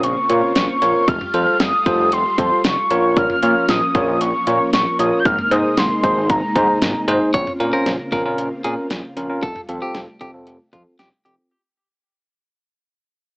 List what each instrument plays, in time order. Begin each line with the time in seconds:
Already playing: string machine C#3 A#3 C4 F4
0.03 analog synth bass A#1, soft synth lead C#6, closed hi-hat
0.30 analog synth bass A#2, tine electric piano F4 A#4 C#5, closed hi-hat
0.55 analog synth bass A#1, soft synth lead C#6, snare, closed hi-hat
0.82 analog synth bass A#1, tine electric piano F4 A#4 C#5, closed hi-hat
1.08 analog synth bass F1, string machine G3 A3, soft synth lead F6, kick, closed hi-hat
1.21 mid tom
1.34 analog synth bass F2, tine electric piano F4 A4 C5, closed hi-hat
1.60 analog synth bass F1, soft synth lead D#6, snare, closed hi-hat
1.86 analog synth bass F1, tine electric piano F4 A4 C5, kick, closed hi-hat, mid tom
1.99 analog synth bass F1
2.12 analog synth bass F1, soft synth lead C6, closed hi-hat
2.38 analog synth bass F2, tine electric piano F4 A4 C5, kick, closed hi-hat
2.64 analog synth bass F1, soft synth lead C#6, snare, closed hi-hat
2.91 analog synth bass A#1, string machine F3 A#3 C#4, tine electric piano F4 A#4 C#5, closed hi-hat
3.17 soft synth lead F6, kick, closed hi-hat
3.30 mid tom
3.43 analog synth bass A#2, tine electric piano F4 A#4 C#5, closed hi-hat
3.69 analog synth bass A#1, soft synth lead D#6, snare, closed hi-hat
3.95 analog synth bass A#1, tine electric piano F4 A#4 C#5, kick, closed hi-hat, mid tom
4.08 analog synth bass A#1
4.21 analog synth bass A#1, soft synth lead C#6, closed hi-hat
4.47 analog synth bass A#2, tine electric piano F4 A#4 C#5, closed hi-hat
4.73 analog synth bass A#1, soft synth lead C#6, snare, closed hi-hat
4.99 analog synth bass A#1, tine electric piano F4 A#4 C#5, soft synth lead D#6, closed hi-hat
5.19 soft synth lead G6
5.25 analog synth bass G#1, string machine C3 G#3 D#4, soft synth lead F6, kick, closed hi-hat
5.38 mid tom
5.51 analog synth bass G#2, tine electric piano D#4 G#4 C5, soft synth lead D#6, closed hi-hat, cowbell
5.77 analog synth bass G#1, soft synth lead C6, snare, closed hi-hat
6.04 analog synth bass G#1, tine electric piano D#4 G#4 C5, kick, closed hi-hat
6.17 analog synth bass G#1
6.30 analog synth bass G#1, soft synth lead A#5, kick, closed hi-hat
6.56 analog synth bass G#2, tine electric piano D#4 G#4 C5, kick, closed hi-hat
6.82 analog synth bass G#1, snare, closed hi-hat
7.08 analog synth bass G#1, tine electric piano D#4 G#4 C5, closed hi-hat, cowbell
7.34 analog synth bass A#1, string machine C#3 A#3 C4 F4, clean electric guitar C#5, kick, closed hi-hat
7.47 mid tom
7.60 analog synth bass A#2, tine electric piano C#4 F4 A#4, closed hi-hat
7.73 tine electric piano C#4 F4 C5, clean electric guitar A#4
7.86 analog synth bass A#1, snare, closed hi-hat
8.12 analog synth bass A#1, tine electric piano C#4 F4 A#4, clean electric guitar A#4, kick, closed hi-hat, mid tom
8.25 analog synth bass A#1, tine electric piano C#4 F4 A#4
8.38 analog synth bass A#1, closed hi-hat
8.64 analog synth bass A#2, tine electric piano C#4 F4 A#4, clean electric guitar G#4, closed hi-hat
8.90 analog synth bass A#1, snare, closed hi-hat
9.17 analog synth bass A#1, tine electric piano C#4 F4 A#4, closed hi-hat
9.30 tine electric piano C#4 F4 A#4
9.43 analog synth bass F1, string machine C3 G3 A3, clean electric guitar A4, kick, closed hi-hat
9.56 mid tom
9.69 analog synth bass F2, tine electric piano C4 F4 A4, closed hi-hat
9.82 tine electric piano C4 F4 A4, clean electric guitar G4
9.95 analog synth bass F1, snare, closed hi-hat
10.21 analog synth bass F1, tine electric piano C4 F4 A4, clean electric guitar G4, kick, closed hi-hat, mid tom
10.34 analog synth bass F1, tine electric piano C4 F4 A4
10.47 analog synth bass F1, closed hi-hat
10.73 analog synth bass F2, tine electric piano C4 F4 A4, clean electric guitar F4, kick, closed hi-hat
10.99 analog synth bass F1, clean electric guitar G4, snare, closed hi-hat
11.25 analog synth bass F1, tine electric piano C4 F4 A4, clean electric guitar G4, closed hi-hat
11.38 tine electric piano C4 F4